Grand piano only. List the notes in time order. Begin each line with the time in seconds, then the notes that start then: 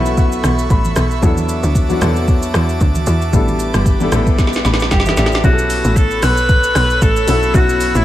Already playing: F#3 B3 C#4 E4 F#4 A4 B4 E5
0.18 F#5
0.71 B5
1.21 F#3 B3 D4 E4 A4
1.89 F#3 B3 D4 E4 F#4
2.00 F#3 B3 D4 E4 A4
3.32 G3 B3 D4 E4 A4
3.99 G3 B3 D4 E4 A4
4.11 G3 B3 D4 E4 A4
4.66 B5
4.92 G5
5.06 B4 E5
5.18 A4 D5 E5
5.33 F#4 B4
5.43 F#3 B3 C#4 E4 G#4
5.53 A4
7.27 F#3 B3 C#4 E4 A4
7.53 F#3 B3 C#4 E4 F#4